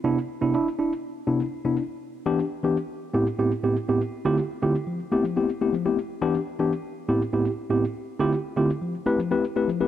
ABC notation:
X:1
M:4/4
L:1/16
Q:1/4=121
K:Am
V:1 name="Tine electric piano"
[C,B,DE] z2 [C,B,DE] [DE] z [DE] z3 [C,B,DE] [DE] z [C,B,DE] [DE] z | z2 [E,B,DG] [DG] z [E,B,DG] z3 [A,,B,CEG] z [A,,B,CEG] z [A,,B,CEG] z [A,,B,CEG] | z2 [D,A,CEFG] [FG] z [D,A,CEFG] z F, z [A,B,CEG] F, [A,B,CEG] z [A,B,CEG] F, [A,B,CEG] | z2 [E,B,DG] [DG] z [E,B,DG] z3 [A,,B,CEG] z [A,,B,CEG] [EG] z [A,,B,CEG] z |
z2 [D,A,CEFG] [FG] z [D,A,CEFG] z F, z [A,CEGB] F, [A,CEGB] z [A,CEGB] F, [A,CEGB] |]